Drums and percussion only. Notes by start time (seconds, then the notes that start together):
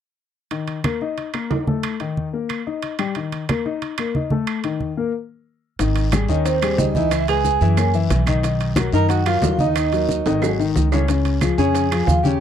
0.51 high conga, high timbale
0.67 high conga, high timbale
0.84 high conga, high timbale, claves
1.01 high conga
1.18 high conga, high timbale
1.34 high conga, high timbale, claves
1.51 high conga, low timbale
1.67 high conga
1.83 high conga, high timbale, claves
2.00 high conga, high timbale
2.17 high conga
2.49 high conga, high timbale, claves
2.67 high conga
2.82 high conga, high timbale
2.99 high timbale, claves
3.15 high conga, high timbale
3.32 high conga, high timbale
3.49 high conga, high timbale, claves
3.66 high conga
3.82 high conga, high timbale
3.98 high conga, high timbale, claves
4.15 high conga
4.30 high conga
4.47 high conga, high timbale, claves
4.64 high conga, high timbale
4.81 high conga
5.79 high bongo, high conga, high timbale, long guiro, maracas
5.96 high bongo, high conga, high timbale, maracas
6.12 high bongo, high conga, high timbale, short guiro, claves, maracas
6.29 high bongo, high conga, short guiro, maracas
6.45 high bongo, high conga, high timbale, long guiro, maracas
6.62 high bongo, high conga, high timbale, claves, maracas
6.78 high bongo, low bongo, high conga, short guiro, maracas
6.95 high conga, short guiro, maracas
7.11 high bongo, high timbale, long guiro, claves, maracas
7.28 high conga, high timbale, maracas
7.44 high bongo, high conga, short guiro, maracas
7.61 high bongo, short guiro, maracas
7.77 high bongo, high conga, high timbale, long guiro, claves, maracas
7.94 high bongo, high conga, maracas
8.10 high bongo, low bongo, high conga, high timbale, short guiro, maracas
8.26 high bongo, high conga, high timbale, short guiro, claves, maracas
8.43 high bongo, high conga, high timbale, long guiro, maracas
8.59 high bongo, high conga, high timbale, maracas
8.76 high bongo, high conga, high timbale, short guiro, claves, maracas
8.92 high conga, short guiro, maracas
9.09 high bongo, high conga, high timbale, long guiro, maracas
9.26 high bongo, high conga, high timbale, claves, maracas
9.42 high bongo, low bongo, high conga, low timbale, short guiro, maracas
9.58 high conga, short guiro, maracas
9.76 high bongo, high conga, high timbale, long guiro, claves, maracas
9.92 high conga, high timbale, maracas
10.09 high bongo, high conga, short guiro, maracas
10.26 high timbale, short guiro, maracas
10.42 high bongo, high conga, high timbale, long guiro, claves, maracas
10.59 high bongo, high conga, maracas
10.76 high bongo, low bongo, high conga, short guiro, maracas
10.92 high bongo, low timbale, short guiro, claves, maracas
11.08 high bongo, high conga, high timbale, long guiro, maracas
11.25 high bongo, high conga, high timbale, maracas
11.41 high bongo, high conga, high timbale, short guiro, claves, maracas
11.58 high conga, short guiro, maracas
11.75 high bongo, high conga, high timbale, long guiro, maracas
11.91 high bongo, high conga, high timbale, claves, maracas
12.07 high bongo, low bongo, high conga, short guiro, maracas
12.24 high conga, short guiro, maracas